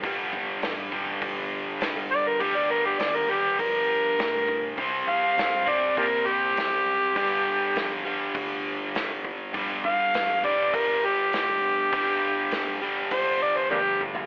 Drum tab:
HH |o---o---o---o---|o---o---o---o---|o---o---o---o---|o---o---o---o---|
SD |----o-------o---|----o-------o---|----o-------o---|----o-------o---|
T1 |----------------|----------------|----------------|----------------|
T2 |----------------|----------------|----------------|----------------|
FT |----------------|----------------|----------------|----------------|
BD |o-o---o-o-------|o-------o-----o-|o-o---o-o-------|o-------o-----o-|

HH |o---o---o---o---|o---o---o-------|
SD |----o-------o---|----o-----------|
T1 |----------------|------------o---|
T2 |----------------|--------------o-|
FT |----------------|---------------o|
BD |o-o---o-o-------|o-------o-------|